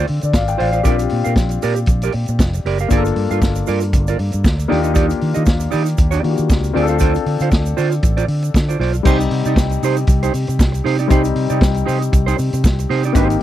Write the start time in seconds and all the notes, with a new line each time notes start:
Already playing: C4 D4 F4 A4
0.07 D3, muted clean electric guitar stroke, open hi-hat
0.21 D3 D5, muted clean electric guitar stroke, closed hi-hat, shaker
0.33 G#1 D5 F5, muted clean electric guitar stroke, kick, snare, shaker
0.48 G5, muted clean electric guitar stroke, closed hi-hat, shaker
0.57 A1 F4 C5 D5 F5, open hi-hat
0.72 F4 C5 D5 F5, closed hi-hat, shaker
0.83 A#1 C4 D4 F4 G4 A#4 D5, kick, closed hi-hat, shaker
0.99 muted clean electric guitar stroke, closed hi-hat, shaker
1.09 A#2, muted clean electric guitar stroke, open hi-hat
1.24 A#2 G4 A#4 F5, closed hi-hat, shaker
1.35 A#1, muted clean electric guitar stroke, kick, snare, shaker
1.49 muted clean electric guitar stroke, closed hi-hat, shaker
1.62 A#2 G4 A#4 D5, open hi-hat, shaker
1.76 muted clean electric guitar stroke, closed hi-hat, shaker
1.86 A#1, muted clean electric guitar stroke, kick, closed hi-hat, shaker
2.02 G4 A#4 D5, closed hi-hat, shaker
2.12 A#2, muted clean electric guitar stroke, open hi-hat
2.26 A#2, muted clean electric guitar stroke, closed hi-hat, shaker
2.39 F1, muted clean electric guitar stroke, kick, snare, shaker
2.53 muted clean electric guitar stroke, closed hi-hat, shaker
2.65 F#1 G4 A#4 D5, open hi-hat
2.78 G4 A#4 F5, closed hi-hat, shaker
2.88 G1 A#3 D4 F4 G#4 A#4 D5, kick, closed hi-hat, shaker
2.97 A4
3.05 muted clean electric guitar stroke, closed hi-hat, shaker
3.16 G2, muted clean electric guitar stroke, open hi-hat
3.31 G2 F4 A#4 F5, closed hi-hat, shaker
3.42 G1, muted clean electric guitar stroke, kick, snare, shaker
3.55 muted clean electric guitar stroke, closed hi-hat, shaker
3.67 G2 F4 A#4 D5, open hi-hat, shaker
3.80 muted clean electric guitar stroke, closed hi-hat, shaker
3.93 G1, muted clean electric guitar stroke, kick, closed hi-hat, shaker
4.07 F4 A#4 D5, closed hi-hat, shaker
4.19 G2, muted clean electric guitar stroke, open hi-hat
4.32 G2, muted clean electric guitar stroke, closed hi-hat, shaker
4.44 D2, muted clean electric guitar stroke, kick, snare, shaker
4.58 muted clean electric guitar stroke, closed hi-hat, shaker
4.68 D#2 A#3 D4 D#4 F4 G4 D5, open hi-hat
4.72 snare
4.83 D#4 G4 D#5, closed hi-hat, shaker
4.94 D#4 G4 D5, kick, closed hi-hat, shaker
5.08 muted clean electric guitar stroke, closed hi-hat, shaker
5.19 D#3, muted clean electric guitar stroke, open hi-hat
5.34 D#3 D#4 G4 D#5, closed hi-hat, shaker
5.45 D#2, muted clean electric guitar stroke, kick, snare, shaker
5.60 muted clean electric guitar stroke, closed hi-hat, shaker
5.71 D#3 D#4 G4 D5, open hi-hat, shaker
5.85 muted clean electric guitar stroke, closed hi-hat, shaker
5.97 D#2, muted clean electric guitar stroke, kick, closed hi-hat, shaker
6.11 D#4 G4 D5, closed hi-hat, shaker
6.23 D#3 A#3 D4 F4 F#4, open hi-hat
6.30 G4
6.36 D#3, muted clean electric guitar stroke, closed hi-hat, shaker
6.49 C#2, muted clean electric guitar stroke, kick, snare, shaker
6.63 muted clean electric guitar stroke, closed hi-hat, shaker
6.73 D2 C4 D4 F4 G#4 C5 D5, open hi-hat
6.82 A4
6.88 F4 C5 F5, closed hi-hat, shaker
6.99 F4 C5 D5, kick, closed hi-hat, shaker
7.14 muted clean electric guitar stroke, closed hi-hat, shaker
7.26 D3, muted clean electric guitar stroke, open hi-hat
7.40 D3 F4 C5 F5, closed hi-hat, shaker
7.51 D2, muted clean electric guitar stroke, kick, snare, shaker
7.66 muted clean electric guitar stroke, closed hi-hat, shaker
7.77 D3 F4 C5 D5, open hi-hat, shaker
7.91 muted clean electric guitar stroke, closed hi-hat, shaker
8.03 A1, muted clean electric guitar stroke, kick, closed hi-hat, shaker
8.17 F4 C5 D5, closed hi-hat, shaker
8.27 D3, muted clean electric guitar stroke, open hi-hat
8.42 muted clean electric guitar stroke, closed hi-hat, shaker
8.54 D3, muted clean electric guitar stroke, kick, snare, shaker
8.69 F4 C5 D5, closed hi-hat, shaker
8.79 B1 F4 C5 D5, snare, open hi-hat
8.93 muted clean electric guitar stroke, closed hi-hat, shaker
9.03 C2 G3 C4 D#4 G4 C5, kick, crash, shaker
9.20 muted clean electric guitar stroke, closed hi-hat, shaker
9.31 C3, muted clean electric guitar stroke, open hi-hat
9.45 C3 D#4 G4 D5, closed hi-hat, shaker
9.56 C2, muted clean electric guitar stroke, kick, snare, shaker
9.69 muted clean electric guitar stroke, closed hi-hat, shaker
9.83 C3 D#4 G4 C5, open hi-hat, shaker
9.97 muted clean electric guitar stroke, closed hi-hat, shaker
10.07 C2, muted clean electric guitar stroke, kick, closed hi-hat, shaker
10.23 D#4 G4 C5, closed hi-hat, shaker
10.34 C3, muted clean electric guitar stroke, open hi-hat, shaker
10.47 C3, muted clean electric guitar stroke, closed hi-hat, shaker
10.59 C2, muted clean electric guitar stroke, kick, snare, shaker
10.72 muted clean electric guitar stroke, closed hi-hat, shaker
10.84 C3 D#4 G4 C5, snare, open hi-hat
10.99 D#4 G4 D5, closed hi-hat, shaker
11.08 C2 G3 C4 D#4 G4 C5, kick, closed hi-hat, shaker
11.24 muted clean electric guitar stroke, closed hi-hat, shaker
11.35 C3, muted clean electric guitar stroke, open hi-hat
11.50 C3 D#4 G4 D5, closed hi-hat, shaker
11.61 C2, kick, snare, shaker
11.74 muted clean electric guitar stroke, closed hi-hat, shaker
11.86 C3 D#4 G4 C5, open hi-hat, shaker
12.01 muted clean electric guitar stroke, closed hi-hat, shaker
12.12 C2, muted clean electric guitar stroke, kick, closed hi-hat, shaker
12.26 D#4 G4 C5, closed hi-hat, shaker
12.38 C3, muted clean electric guitar stroke, open hi-hat, shaker
12.53 C3, muted clean electric guitar stroke, closed hi-hat, shaker
12.64 C2, muted clean electric guitar stroke, kick, snare, shaker
12.78 muted clean electric guitar stroke, closed hi-hat, shaker
12.89 C3 D#4 G4 C5, snare, open hi-hat
13.03 D#4 G4 D5, closed hi-hat, shaker
13.13 G#1 A#3 C4 D#4 F#4 G4, kick, closed hi-hat, shaker
13.17 C5
13.21 G4
13.30 muted clean electric guitar stroke, closed hi-hat, shaker